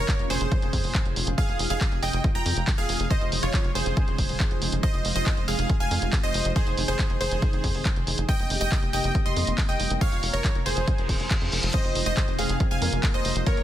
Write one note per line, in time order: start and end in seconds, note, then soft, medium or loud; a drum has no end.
0.00 1.36 A#2 medium
0.00 1.36 C#3 medium
0.00 6.52 F3 medium
0.00 1.36 C#4 medium
0.00 4.79 F4 medium
0.00 0.25 A#4 medium
0.00 0.25 C#5 loud
0.08 kick loud
0.08 clap loud
0.08 closed hi-hat medium
0.19 0.27 F1 medium
0.19 closed hi-hat soft
0.30 0.38 F1 loud
0.30 1.29 G#4 medium
0.30 1.29 C5 medium
0.30 1.29 C5 loud
0.30 open hi-hat loud
0.41 0.49 F1 medium
0.41 closed hi-hat medium
0.52 kick loud
0.52 closed hi-hat medium
0.62 0.70 F1 medium
0.62 closed hi-hat soft
0.73 0.81 F2 loud
0.73 kick medium
0.73 open hi-hat loud
0.84 0.92 F1 medium
0.84 open hi-hat medium
0.95 kick loud
0.95 clap loud
0.95 closed hi-hat medium
1.05 1.13 F1 medium
1.05 closed hi-hat soft
1.16 1.24 F1 loud
1.16 open hi-hat loud
1.27 1.35 F1 medium
1.27 closed hi-hat medium
1.38 3.09 C3 medium
1.38 8.25 G#3 medium
1.38 3.09 D#4 medium
1.38 1.65 G#4 medium
1.38 1.65 F5 medium
1.38 1.65 F5 loud
1.38 kick loud
1.38 closed hi-hat soft
1.49 1.56 F1 medium
1.49 closed hi-hat soft
1.59 1.67 F1 loud
1.59 open hi-hat loud
1.70 1.78 F1 medium
1.70 1.98 G#4 medium
1.70 1.98 F5 medium
1.70 1.98 F5 loud
1.70 closed hi-hat medium
1.81 kick loud
1.81 clap loud
1.81 closed hi-hat medium
1.92 2.00 F1 medium
1.92 closed hi-hat soft
2.03 2.10 F1 medium
2.03 2.30 D#5 medium
2.03 2.30 G5 medium
2.03 open hi-hat loud
2.13 2.21 F1 medium
2.13 closed hi-hat medium
2.24 kick loud
2.24 closed hi-hat soft
2.35 2.43 F1 medium
2.35 2.72 G5 medium
2.35 2.72 A#5 loud
2.35 2.72 A#5 medium
2.35 closed hi-hat soft
2.46 2.54 F2 loud
2.46 open hi-hat loud
2.56 2.64 F1 medium
2.56 closed hi-hat medium
2.67 kick loud
2.67 clap loud
2.67 open hi-hat medium
2.78 2.86 F1 medium
2.78 3.06 G#4 medium
2.78 3.06 F5 loud
2.78 3.06 F5 medium
2.78 closed hi-hat soft
2.89 2.97 F1 loud
2.89 open hi-hat loud
3.00 3.08 F1 medium
3.00 closed hi-hat medium
3.10 4.82 C#3 medium
3.10 9.97 D#4 medium
3.10 3.38 C5 medium
3.10 3.38 D#5 medium
3.10 kick loud
3.10 closed hi-hat soft
3.21 3.29 F1 medium
3.21 closed hi-hat soft
3.32 3.40 F1 loud
3.32 open hi-hat loud
3.43 3.51 F1 medium
3.43 3.70 F4 medium
3.43 3.70 C#5 loud
3.43 3.70 C#5 medium
3.43 closed hi-hat medium
3.54 kick loud
3.54 clap loud
3.54 closed hi-hat medium
3.64 3.72 F1 medium
3.64 closed hi-hat soft
3.75 3.83 F1 loud
3.75 4.75 G#4 medium
3.75 4.75 C5 loud
3.75 4.75 C5 medium
3.75 open hi-hat loud
3.86 3.94 F1 medium
3.86 closed hi-hat soft
3.97 kick loud
3.97 closed hi-hat soft
4.08 4.16 F1 medium
4.08 closed hi-hat soft
4.18 4.26 F1 loud
4.18 kick medium
4.18 open hi-hat loud
4.29 4.37 D#1 medium
4.29 open hi-hat medium
4.40 kick loud
4.40 clap loud
4.40 closed hi-hat soft
4.51 4.59 F1 medium
4.51 closed hi-hat soft
4.62 4.69 F1 loud
4.62 open hi-hat loud
4.72 4.80 F1 medium
4.72 closed hi-hat medium
4.83 9.97 C3 medium
4.83 6.54 F4 medium
4.83 5.11 C5 medium
4.83 5.11 D#5 loud
4.83 kick loud
4.83 closed hi-hat soft
4.94 5.02 F1 medium
4.94 closed hi-hat soft
5.05 5.13 F1 loud
5.05 open hi-hat loud
5.16 5.23 F1 loud
5.16 5.43 C5 medium
5.16 5.43 D#5 loud
5.16 closed hi-hat soft
5.26 kick loud
5.26 clap loud
5.26 closed hi-hat medium
5.37 5.45 F1 medium
5.37 closed hi-hat soft
5.48 5.56 F1 medium
5.48 5.75 G#4 medium
5.48 5.75 F5 medium
5.48 5.75 F5 loud
5.48 open hi-hat loud
5.59 5.67 F1 medium
5.59 closed hi-hat medium
5.70 kick loud
5.70 closed hi-hat soft
5.80 5.88 F1 medium
5.80 6.17 F5 medium
5.80 6.17 G#5 medium
5.80 closed hi-hat soft
5.91 5.99 F2 loud
5.91 open hi-hat loud
6.02 6.10 F1 medium
6.02 closed hi-hat soft
6.13 kick loud
6.13 clap loud
6.13 open hi-hat medium
6.23 6.31 F1 medium
6.23 6.51 C5 medium
6.23 6.51 D#5 medium
6.23 6.51 D#5 loud
6.23 closed hi-hat soft
6.34 6.42 F1 loud
6.34 open hi-hat loud
6.45 6.53 F1 medium
6.45 closed hi-hat medium
6.56 8.27 D#3 medium
6.56 6.83 G#4 medium
6.56 8.27 G#4 medium
6.56 6.83 C5 loud
6.56 6.83 C5 medium
6.56 kick loud
6.56 closed hi-hat soft
6.67 6.75 F1 medium
6.67 closed hi-hat soft
6.77 6.85 F1 loud
6.77 open hi-hat loud
6.88 6.96 F1 medium
6.88 7.16 G#4 medium
6.88 7.16 C5 medium
6.88 closed hi-hat medium
6.99 kick loud
6.99 clap loud
6.99 closed hi-hat medium
7.10 7.18 F1 medium
7.10 closed hi-hat soft
7.21 7.29 F1 loud
7.21 8.20 G#4 medium
7.21 8.20 C5 medium
7.21 8.20 C5 loud
7.21 open hi-hat loud
7.31 7.39 F1 medium
7.31 closed hi-hat medium
7.42 kick loud
7.42 closed hi-hat soft
7.53 7.61 F1 medium
7.53 closed hi-hat soft
7.64 7.72 F2 loud
7.64 kick medium
7.64 open hi-hat loud
7.75 7.83 F1 medium
7.75 open hi-hat medium
7.85 kick loud
7.85 clap loud
7.85 closed hi-hat medium
7.96 8.04 F1 medium
7.96 closed hi-hat soft
8.07 8.15 F1 loud
8.07 open hi-hat loud
8.18 8.26 F1 medium
8.18 closed hi-hat medium
8.28 9.99 G3 medium
8.28 11.70 A#3 medium
8.28 9.99 G4 medium
8.28 8.56 D#5 medium
8.28 8.56 G5 loud
8.28 kick loud
8.28 closed hi-hat medium
8.39 8.47 F1 medium
8.39 closed hi-hat soft
8.50 8.58 F1 loud
8.50 open hi-hat loud
8.61 8.69 F1 medium
8.61 8.88 D#5 medium
8.61 8.88 G5 loud
8.61 closed hi-hat medium
8.72 kick loud
8.72 clap loud
8.72 closed hi-hat medium
8.83 8.90 F1 medium
8.83 closed hi-hat soft
8.93 9.01 F1 loud
8.93 9.21 D#5 medium
8.93 9.21 G5 medium
8.93 open hi-hat loud
9.04 9.12 F1 medium
9.04 closed hi-hat medium
9.15 kick loud
9.15 closed hi-hat medium
9.26 9.34 F1 medium
9.26 9.62 D#5 medium
9.26 9.62 C6 medium
9.26 closed hi-hat soft
9.36 9.44 F2 loud
9.36 open hi-hat loud
9.47 9.55 F1 medium
9.47 closed hi-hat medium
9.58 kick loud
9.58 clap loud
9.58 open hi-hat medium
9.69 9.77 F1 medium
9.69 9.96 D#5 medium
9.69 9.96 G5 loud
9.69 closed hi-hat soft
9.80 9.88 F1 loud
9.80 open hi-hat loud
9.90 9.98 F1 loud
9.90 closed hi-hat medium
10.01 11.72 C#3 medium
10.01 13.63 F3 medium
10.01 11.72 F4 medium
10.01 11.72 A#4 medium
10.01 10.29 C#5 medium
10.01 10.29 F5 medium
10.01 10.29 F5 loud
10.01 kick loud
10.01 closed hi-hat medium
10.12 10.20 F1 medium
10.12 closed hi-hat soft
10.23 10.31 F1 loud
10.23 open hi-hat loud
10.33 10.41 F1 medium
10.33 10.61 A#4 medium
10.33 10.61 C#5 medium
10.33 10.61 C#5 loud
10.33 closed hi-hat medium
10.44 kick loud
10.44 clap loud
10.44 closed hi-hat medium
10.55 10.63 F1 medium
10.55 closed hi-hat soft
10.66 10.74 F1 loud
10.66 11.65 G#4 medium
10.66 11.65 C5 medium
10.66 11.65 C5 loud
10.66 open hi-hat loud
10.77 10.85 F1 medium
10.77 closed hi-hat medium
10.88 kick loud
10.88 closed hi-hat medium
10.88 reverse cymbal medium
10.98 11.06 F1 medium
10.98 closed hi-hat soft
11.09 11.17 D#1 loud
11.09 kick medium
11.09 open hi-hat loud
11.20 11.28 F1 medium
11.20 open hi-hat medium
11.31 kick loud
11.31 clap loud
11.31 closed hi-hat medium
11.41 11.49 F2 medium
11.41 closed hi-hat soft
11.52 11.60 F1 loud
11.52 open hi-hat loud
11.63 11.71 F1 medium
11.63 closed hi-hat medium
11.74 13.45 C3 medium
11.74 13.45 G#3 medium
11.74 12.30 C4 medium
11.74 13.45 D#4 medium
11.74 13.63 F4 medium
11.74 12.01 C5 medium
11.74 12.30 C5 medium
11.74 12.01 D#5 medium
11.74 12.01 D#5 loud
11.74 kick loud
11.74 closed hi-hat medium
11.74 crash medium
11.85 11.92 F1 medium
11.85 closed hi-hat soft
11.95 12.03 F1 loud
11.95 open hi-hat loud
12.06 12.14 F1 medium
12.06 12.34 C5 medium
12.06 12.34 D#5 medium
12.06 12.34 D#5 loud
12.06 closed hi-hat medium
12.17 kick loud
12.17 clap loud
12.17 closed hi-hat medium
12.28 12.36 F1 medium
12.28 closed hi-hat soft
12.38 12.46 F1 loud
12.38 12.80 C4 medium
12.38 12.66 G#4 medium
12.38 12.80 C5 medium
12.38 12.66 F5 medium
12.38 open hi-hat loud
12.49 12.57 F1 medium
12.49 closed hi-hat medium
12.60 kick loud
12.60 closed hi-hat medium
12.71 12.79 F1 medium
12.71 13.08 F5 medium
12.71 13.08 G#5 loud
12.71 13.08 G#5 medium
12.71 closed hi-hat soft
12.82 12.90 F2 loud
12.82 13.38 A#3 medium
12.82 13.38 A#4 medium
12.82 open hi-hat loud
12.92 13.00 F1 medium
12.92 closed hi-hat medium
13.03 kick loud
13.03 clap loud
13.03 open hi-hat medium
13.14 13.22 F1 medium
13.14 13.42 C5 medium
13.14 13.42 D#5 loud
13.14 closed hi-hat soft
13.25 13.33 F1 loud
13.25 open hi-hat loud
13.36 13.44 F1 medium
13.36 closed hi-hat medium
13.46 13.63 C#3 medium
13.46 13.63 A#3 medium
13.46 13.63 A#4 medium
13.46 13.63 C#5 medium
13.46 13.63 C#5 loud
13.46 kick loud
13.46 closed hi-hat medium
13.57 13.63 F1 medium
13.57 closed hi-hat soft